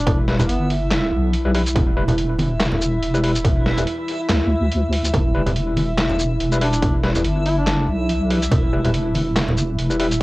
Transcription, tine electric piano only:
0.28 G3 E4 B4
0.39 G3 E4 B4
1.45 G3 E4 B4
1.55 G3 E4 B4
1.97 G3 E4 B4
2.09 G3 E4 B4
3.14 G3 E4 B4
3.24 G3 E4 B4
3.66 G3 E4 B4
3.77 G3 E4 B4
5.35 G3 E4 B4
5.46 G3 E4 B4
6.52 G3 E4 B4
6.61 G3 E4 B4
7.04 G3 E4 B4
7.16 G3 E4 B4
8.30 G3 E4 B4
8.73 G3 E4 B4
8.84 G3 E4 B4
9.90 G3 E4 B4
9.99 G3 E4 B4

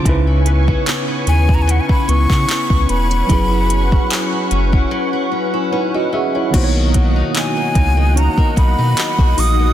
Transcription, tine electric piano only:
0.03 C#3 C#4 D#4
0.08 E4 B4
3.27 F#3 C#4 E4
3.32 G#4 B4
5.73 D#4 B4
5.95 F#4 D#5
6.14 G#4 E5
6.35 E4 C#5
6.51 D#3 B3 D#4
6.56 A#3 C5
6.64 C#5

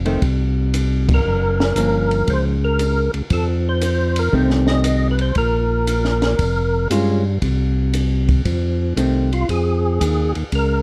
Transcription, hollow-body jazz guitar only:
0.05 D#3 A3 C4
1.76 F3 A#3 C#4
4.32 D#3 A3 C4
6.91 G#3 C#4 F4
8.97 D#3 A3 C4

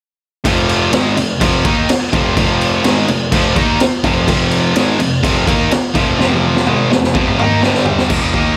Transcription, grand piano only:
0.45 F1
0.93 G#1
1.17 F1
1.41 F1
1.65 D#2
1.90 F1
2.13 F1
2.37 F1
2.86 G#1
3.08 F1
3.32 F1
3.56 D#2
3.80 F1
4.04 F1
4.28 F1
4.76 G#1
4.99 F1
5.24 F1
5.47 D#2
5.71 F1
5.96 F1
6.19 F1
6.67 G#1
6.91 F1
7.15 F1
7.39 D#2
7.62 G1
8.10 F1
8.34 D#2

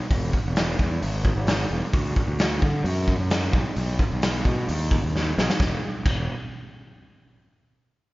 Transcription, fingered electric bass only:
0.11 E1
0.46 E1
0.79 E2
1.03 G#1
1.36 G#1
1.71 E1
1.93 D2
2.28 D2
2.63 D3
2.84 F#2
3.19 F#2
3.53 B1
3.77 B1
4.12 B1
4.45 B2
4.69 D#2
5.04 D#2
5.38 B1
5.60 E1
6.06 E1

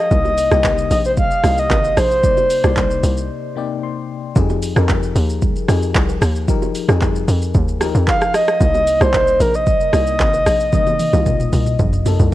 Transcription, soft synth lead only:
Already playing: D#5
0.92 D#5
1.06 C5
1.19 F5
1.59 D#5
1.98 C5
8.09 F5
8.35 D#5
8.62 D#5
9.02 C5
9.41 A#4
9.55 D#5

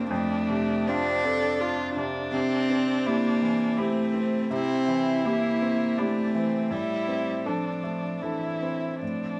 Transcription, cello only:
0.11 A3
0.87 D4
2.33 C4
3.06 A#3
3.78 A3
4.51 C4
5.25 A#3
5.98 A3
6.73 G3
7.47 F3
8.23 E3
9.02 F3

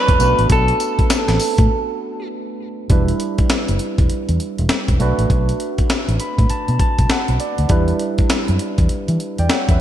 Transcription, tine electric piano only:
Already playing: G3 B3 D4 E4 B4
0.19 A3 B3 C#4 F#4 B4
0.27 D4
2.90 G3 D4 E4 B4
4.99 A3 D4 F#4 B4
6.20 B5
6.50 A5
6.80 A5
7.10 F#5
7.40 D5
7.69 G3 D4 E4 B4
9.39 D5 G5
9.51 C#5 F#5
9.70 B4 E5

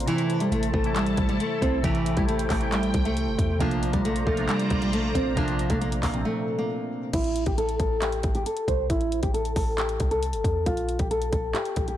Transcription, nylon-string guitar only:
0.08 E3
0.41 G3
0.52 A3
0.73 A3
0.96 G3
1.29 G3
1.40 A3
1.62 C4
1.84 E3
2.17 G3
2.28 A3
2.50 A3
2.72 G3
3.05 A3
3.60 F3
3.93 G3
4.05 A3
4.27 A3
4.48 G3
4.82 G3
4.93 A3
5.15 C4
5.37 F3
5.70 A3
5.81 A#3
6.03 A#3
6.25 A3
6.58 A#3
7.14 E4
7.47 G4
7.58 A4
7.79 A4
8.02 G4
8.35 G4
8.46 A4
8.68 C5
8.90 E4
9.23 G4
9.34 A4
9.56 A4
9.78 G4
10.11 A4
10.66 F4
10.99 G4
11.11 A4
11.33 A4
11.54 G4
11.88 G4

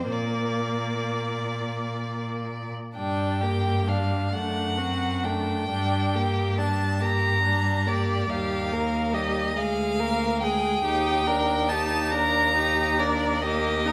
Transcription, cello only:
Already playing: F2
0.12 A#2
2.97 G2
4.34 F#2
5.71 G2
8.31 D#2
9.57 D2
10.85 D#2

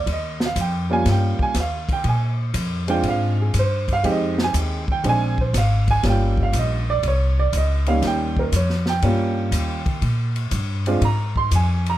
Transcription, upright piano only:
0.13 D#5
0.46 F5
0.61 G5
0.90 G3 A#3 C#4 F4 G#5
1.11 G5
1.43 G#5
1.60 F5
1.93 G5
2.09 G#5
2.88 G#3 C4 D4 F4 G5
3.08 F5
3.41 G#4
3.59 C5
3.93 F5
4.03 G#3 C4 D#4 G4
4.12 D#5
4.44 G#5
4.92 G5
5.04 G#3 C4 D4 G#4
5.09 G#5
5.41 C5
5.58 F5
5.91 G#5
6.03 G3 A#3 C#4 F4
6.09 G5
6.43 F5
6.59 D#5
6.90 D5
7.08 C#5
7.39 D5
7.57 D#5
7.87 G3 A#3 C#4 D#4 F5
8.07 G5
8.39 A#4
8.56 C#5
8.89 G5
9.03 G3 A#3 C#4 F4
10.87 G#3 C4 D4 F4
11.05 A#5
11.37 C6
11.55 G#5
11.90 A#5

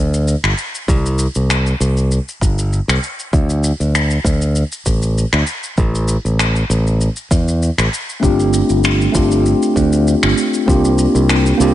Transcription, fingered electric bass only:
Already playing: D2
0.44 G1
0.88 C2
1.36 C2
1.80 C2
2.41 G1
2.88 C2
3.33 D2
3.80 D2
4.24 D2
4.86 A1
5.33 D2
5.78 A1
6.25 A1
6.70 A1
7.31 E2
7.78 A1
8.23 G1
8.70 G1
9.15 G1
9.76 D2
10.23 G1
10.68 C2
11.15 C2
11.60 C2

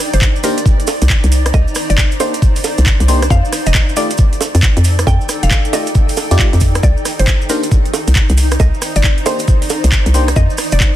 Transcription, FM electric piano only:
0.44 A#3 D4 D#4 G4 C5
2.20 A#3 D4 D#4 G4 C5
3.08 A#3 D4 D#4 G4 C5
3.97 A3 D#4 F4 G4 D5
5.73 A3 D#4 F4 G4 D5
6.31 A3 D#4 F4 G4 D5
7.50 A#3 D4 D#4 G4 C5
9.26 A#3 D4 D#4 G4 C5
10.14 A#3 D4 D#4 G4 C5

